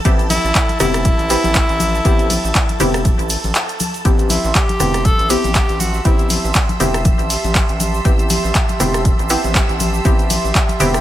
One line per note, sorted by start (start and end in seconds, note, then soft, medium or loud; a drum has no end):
0.00 4.06 A4 medium
0.00 4.06 A5 medium
0.05 0.38 A1 loud
0.05 0.77 B3 medium
0.05 0.78 C4 medium
0.05 0.78 E4 medium
0.05 0.78 G4 medium
0.05 kick loud
0.05 closed hi-hat medium
0.05 shaker soft
0.19 closed hi-hat soft
0.19 shaker soft
0.30 0.77 E4 loud
0.30 open hi-hat loud
0.30 ride medium
0.30 high conga loud
0.30 shaker medium
0.44 0.52 A1 medium
0.44 shaker soft
0.55 kick loud
0.55 clap loud
0.55 closed hi-hat medium
0.55 shaker medium
0.69 closed hi-hat medium
0.69 high conga medium
0.69 shaker soft
0.80 1.13 E1 medium
0.80 1.27 B3 medium
0.80 1.28 C4 medium
0.80 3.51 E4 loud
0.80 1.28 E4 medium
0.80 1.28 G4 medium
0.80 cross-stick medium
0.80 open hi-hat medium
0.80 ride medium
0.80 low conga medium
0.80 shaker medium
0.94 cross-stick medium
0.94 closed hi-hat medium
0.94 shaker soft
1.05 kick loud
1.05 closed hi-hat medium
1.05 high conga medium
1.05 shaker soft
1.19 1.37 A1 medium
1.19 closed hi-hat soft
1.19 shaker soft
1.30 2.02 B3 medium
1.30 2.02 C4 medium
1.30 2.03 E4 medium
1.30 2.03 G4 loud
1.30 open hi-hat loud
1.30 ride medium
1.30 shaker medium
1.44 1.62 A1 medium
1.44 closed hi-hat soft
1.44 high conga medium
1.44 shaker soft
1.54 kick loud
1.54 clap loud
1.54 closed hi-hat medium
1.54 shaker medium
1.69 2.00 A1 medium
1.69 closed hi-hat soft
1.69 shaker soft
1.80 open hi-hat medium
1.80 ride medium
1.80 high conga medium
1.80 shaker medium
1.95 shaker soft
2.05 2.38 A1 loud
2.05 2.77 B3 medium
2.05 2.77 C4 medium
2.05 2.78 E4 medium
2.05 2.78 G4 loud
2.05 kick loud
2.05 closed hi-hat medium
2.05 shaker soft
2.19 closed hi-hat soft
2.19 shaker soft
2.30 open hi-hat loud
2.30 ride medium
2.30 high conga medium
2.30 shaker medium
2.44 2.52 A1 medium
2.44 shaker soft
2.55 kick loud
2.55 clap loud
2.55 closed hi-hat medium
2.55 shaker medium
2.69 closed hi-hat medium
2.69 high conga medium
2.69 shaker soft
2.80 3.13 E1 medium
2.80 4.02 B3 medium
2.80 4.03 C4 medium
2.80 4.03 E4 medium
2.80 4.03 G4 loud
2.80 open hi-hat medium
2.80 ride medium
2.80 low conga medium
2.80 shaker medium
2.94 cross-stick medium
2.94 closed hi-hat medium
2.94 shaker soft
3.05 kick loud
3.05 closed hi-hat medium
3.05 high conga medium
3.05 shaker medium
3.19 3.37 A1 medium
3.19 closed hi-hat soft
3.19 shaker soft
3.29 open hi-hat loud
3.29 ride medium
3.29 shaker medium
3.44 3.52 A1 loud
3.44 closed hi-hat soft
3.44 high conga medium
3.44 shaker soft
3.55 clap loud
3.55 closed hi-hat medium
3.55 shaker soft
3.69 closed hi-hat soft
3.69 shaker soft
3.80 open hi-hat medium
3.80 ride medium
3.80 high conga medium
3.80 shaker medium
3.94 closed hi-hat soft
3.94 shaker soft
4.05 4.38 A1 loud
4.05 4.77 B3 medium
4.05 4.78 C4 medium
4.05 4.78 E4 medium
4.05 11.01 G4 medium
4.05 4.78 G4 loud
4.05 11.01 E5 medium
4.05 11.01 A5 medium
4.05 11.01 C6 medium
4.05 11.01 E6 medium
4.05 kick loud
4.05 closed hi-hat medium
4.05 shaker medium
4.19 closed hi-hat soft
4.19 shaker soft
4.30 4.57 E4 medium
4.30 open hi-hat loud
4.30 ride medium
4.30 high conga loud
4.30 shaker medium
4.44 4.52 A1 medium
4.44 shaker soft
4.55 5.07 G4 loud
4.55 kick loud
4.55 clap loud
4.55 closed hi-hat medium
4.55 shaker medium
4.69 closed hi-hat medium
4.69 high conga medium
4.69 shaker soft
4.80 5.13 E1 loud
4.80 5.27 B3 medium
4.80 5.28 C4 medium
4.80 5.28 E4 medium
4.80 5.28 G4 medium
4.80 cross-stick medium
4.80 open hi-hat loud
4.80 ride medium
4.80 low conga loud
4.80 shaker medium
4.94 cross-stick medium
4.94 closed hi-hat medium
4.94 shaker soft
5.05 5.32 A4 loud
5.05 kick loud
5.05 closed hi-hat medium
5.05 high conga medium
5.05 shaker medium
5.19 5.37 A1 medium
5.19 closed hi-hat soft
5.19 shaker soft
5.30 6.02 B3 medium
5.30 6.03 C4 medium
5.30 6.03 E4 medium
5.30 5.82 G4 loud
5.30 6.03 G4 medium
5.30 open hi-hat loud
5.30 ride medium
5.30 shaker loud
5.44 5.62 A1 medium
5.44 closed hi-hat soft
5.44 high conga medium
5.44 shaker soft
5.54 kick loud
5.54 clap loud
5.54 closed hi-hat medium
5.54 shaker medium
5.69 6.00 A1 medium
5.69 closed hi-hat soft
5.69 shaker soft
5.80 6.05 F#4 loud
5.80 open hi-hat medium
5.80 ride medium
5.80 high conga medium
5.80 shaker loud
5.94 shaker soft
6.05 6.38 A1 loud
6.05 6.77 B3 medium
6.05 6.78 C4 medium
6.05 6.78 E4 medium
6.05 6.52 E4 medium
6.05 6.78 G4 loud
6.05 kick loud
6.05 closed hi-hat medium
6.05 shaker medium
6.19 closed hi-hat soft
6.19 shaker soft
6.30 open hi-hat loud
6.30 ride medium
6.30 high conga loud
6.30 shaker medium
6.44 6.52 A1 medium
6.44 shaker soft
6.54 kick loud
6.54 clap loud
6.54 closed hi-hat medium
6.54 shaker medium
6.69 closed hi-hat medium
6.69 high conga medium
6.69 shaker soft
6.80 7.13 E1 medium
6.80 8.02 B3 medium
6.80 8.03 C4 medium
6.80 8.03 E4 medium
6.80 8.03 G4 loud
6.80 open hi-hat loud
6.80 ride medium
6.80 low conga medium
6.80 shaker loud
6.94 cross-stick medium
6.94 closed hi-hat medium
6.94 shaker soft
7.05 kick loud
7.05 closed hi-hat medium
7.05 high conga medium
7.05 shaker medium
7.19 7.37 A1 medium
7.19 closed hi-hat soft
7.19 shaker soft
7.30 open hi-hat loud
7.30 ride medium
7.30 shaker medium
7.44 7.62 A1 medium
7.44 closed hi-hat soft
7.44 high conga medium
7.44 shaker soft
7.55 kick loud
7.55 clap loud
7.55 closed hi-hat medium
7.55 shaker medium
7.69 8.00 A1 medium
7.69 closed hi-hat soft
7.69 shaker soft
7.80 open hi-hat loud
7.80 ride medium
7.80 high conga medium
7.80 shaker loud
7.94 shaker soft
8.05 8.38 A1 loud
8.05 8.77 B3 medium
8.05 8.77 C4 medium
8.05 8.78 E4 medium
8.05 8.78 G4 loud
8.05 kick loud
8.05 closed hi-hat medium
8.05 shaker medium
8.19 closed hi-hat soft
8.19 shaker soft
8.30 open hi-hat loud
8.30 ride medium
8.30 high conga loud
8.30 shaker medium
8.44 8.52 A1 medium
8.44 shaker soft
8.55 kick loud
8.55 clap loud
8.55 closed hi-hat medium
8.55 shaker medium
8.69 closed hi-hat medium
8.69 high conga medium
8.69 shaker soft
8.80 9.13 E1 medium
8.80 9.27 B3 medium
8.80 9.28 C4 medium
8.80 9.28 E4 medium
8.80 9.28 G4 medium
8.80 cross-stick medium
8.80 open hi-hat loud
8.80 ride medium
8.80 low conga medium
8.80 shaker loud
8.94 cross-stick medium
8.94 closed hi-hat medium
8.94 shaker soft
9.05 kick loud
9.05 closed hi-hat medium
9.05 high conga medium
9.05 shaker medium
9.19 9.37 A1 medium
9.19 closed hi-hat soft
9.19 shaker soft
9.29 10.02 B3 medium
9.29 10.03 C4 medium
9.29 10.03 E4 medium
9.29 10.03 G4 loud
9.29 open hi-hat loud
9.29 ride medium
9.29 shaker loud
9.44 9.62 A1 medium
9.44 closed hi-hat soft
9.44 high conga medium
9.44 shaker soft
9.55 kick loud
9.55 clap loud
9.55 closed hi-hat medium
9.55 shaker medium
9.69 10.00 A1 medium
9.69 closed hi-hat soft
9.69 shaker soft
9.80 open hi-hat loud
9.80 ride medium
9.80 high conga medium
9.80 shaker loud
9.94 shaker soft
10.05 10.38 A1 loud
10.05 10.77 B3 medium
10.05 10.78 C4 medium
10.05 10.78 E4 medium
10.05 10.78 G4 loud
10.05 kick loud
10.05 closed hi-hat medium
10.05 shaker medium
10.19 closed hi-hat soft
10.19 shaker soft
10.30 open hi-hat loud
10.30 ride medium
10.30 high conga medium
10.30 shaker medium
10.44 10.52 A1 medium
10.44 shaker soft
10.55 kick loud
10.55 clap loud
10.55 closed hi-hat medium
10.55 shaker medium
10.69 closed hi-hat medium
10.69 high conga medium
10.69 shaker soft
10.80 11.01 E1 loud
10.80 11.01 B3 medium
10.80 11.01 C4 medium
10.80 11.01 E4 medium
10.80 11.01 G4 loud
10.80 open hi-hat loud
10.80 ride medium
10.80 low conga medium
10.80 shaker medium
10.94 cross-stick medium
10.94 closed hi-hat soft
10.94 shaker soft